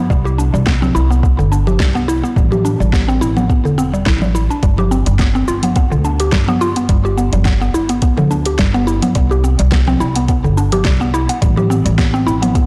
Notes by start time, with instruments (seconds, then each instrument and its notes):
0.10 upright bass C2, synth pluck G3, kick, shaker
0.25 synth pluck G4, shaker
0.38 synth pluck D4, shaker
0.54 upright bass C2, synth pluck G3, shaker
0.67 synth pluck B3, kick, snare, shaker
0.82 synth pluck C4, low conga, shaker
0.95 upright bass C2, synth pluck E4, shaker
1.10 synth pluck B3, shaker
1.23 synth pluck B3, kick, shaker
1.39 upright bass G1, synth pluck D3, shaker
1.52 synth pluck D4, shaker
1.67 synth pluck G4, low conga, shaker
1.80 upright bass C2, synth pluck G3, kick, snare, shaker
1.95 synth pluck B3, shaker
2.08 synth pluck E4, shaker
2.24 synth pluck B3, shaker
2.36 upright bass A1, synth pluck G3, kick, shaker
2.52 synth pluck G4, low conga, shaker
2.65 synth pluck D4, shaker
2.80 upright bass A1, synth pluck G3, shaker
2.93 synth pluck B3, kick, snare, shaker
3.08 synth pluck C4, shaker
3.21 upright bass A1, synth pluck E4, shaker
3.37 synth pluck B3, low conga, shaker
3.50 synth pluck B3, kick, shaker
3.65 upright bass E1, synth pluck D3, shaker
3.78 synth pluck C4, shaker
3.94 synth pluck G3, shaker
4.06 upright bass A1, synth pluck E4, kick, snare, shaker
4.22 synth pluck G3, low conga, shaker
4.35 synth pluck E4, shaker
4.50 synth pluck D4, shaker
4.63 upright bass G1, synth pluck G3, kick, closed hi-hat, shaker
4.78 synth pluck G4, low conga, shaker
4.91 synth pluck C4, shaker
5.06 upright bass G1, synth pluck G3, closed hi-hat, shaker
5.19 synth pluck B3, kick, snare, closed hi-hat, shaker
5.35 synth pluck C4, shaker
5.48 upright bass G1, synth pluck F4, shaker
5.63 synth pluck B3, closed hi-hat, low conga, shaker
5.76 synth pluck B3, kick, closed hi-hat, shaker
5.92 upright bass D2, synth pluck D3, shaker
6.05 synth pluck D4, shaker
6.20 synth pluck G4, closed hi-hat, shaker
6.32 upright bass G1, synth pluck G3, kick, snare, closed hi-hat, shaker
6.48 synth pluck B3, low conga, shaker
6.61 synth pluck F4, shaker
6.76 synth pluck B3, closed hi-hat, shaker
6.89 upright bass G1, synth pluck G3, kick, closed hi-hat, shaker
7.05 synth pluck G4, shaker
7.18 synth pluck B3, shaker
7.33 upright bass G1, synth pluck G3, closed hi-hat, low conga, shaker
7.45 synth pluck B3, kick, snare, closed hi-hat, shaker
7.61 synth pluck B3, shaker
7.74 upright bass G1, synth pluck E4, shaker
7.89 synth pluck B3, closed hi-hat, shaker
8.02 synth pluck B3, kick, closed hi-hat, shaker
8.17 upright bass D2, synth pluck D3, low conga, shaker
8.31 synth pluck D4, shaker
8.46 synth pluck G4, closed hi-hat, shaker
8.59 upright bass G1, synth pluck G3, kick, snare, closed hi-hat, shaker
8.74 synth pluck B3, shaker
8.87 synth pluck E4, shaker
9.02 synth pluck B3, closed hi-hat, low conga, shaker
9.15 upright bass C2, synth pluck G3, kick, closed hi-hat, shaker
9.31 synth pluck G4, shaker
9.44 synth pluck C4, shaker
9.59 upright bass C2, synth pluck G3, closed hi-hat, shaker
9.72 synth pluck B3, kick, snare, closed hi-hat, shaker
9.87 synth pluck C4, low conga, shaker
10.00 upright bass C2, synth pluck E4, shaker
10.15 synth pluck B3, closed hi-hat, shaker
10.28 synth pluck B3, kick, closed hi-hat, shaker
10.44 upright bass G1, synth pluck D3, shaker
10.57 synth pluck D4, shaker
10.72 synth pluck G4, closed hi-hat, low conga, shaker
10.85 upright bass C2, synth pluck G3, kick, snare, closed hi-hat, shaker
11.01 synth pluck B3, shaker
11.14 synth pluck E4, shaker
11.29 synth pluck B3, closed hi-hat, shaker
11.42 upright bass A1, synth pluck G3, kick, closed hi-hat, shaker
11.57 synth pluck G4, low conga, shaker
11.70 synth pluck C4, shaker
11.85 upright bass A1, synth pluck G3, closed hi-hat, shaker
11.98 synth pluck B3, kick, snare, closed hi-hat, shaker
12.14 synth pluck C4, shaker
12.27 upright bass A1, synth pluck E4, shaker
12.42 synth pluck B3, closed hi-hat, low conga, shaker
12.55 synth pluck B3, kick, closed hi-hat, shaker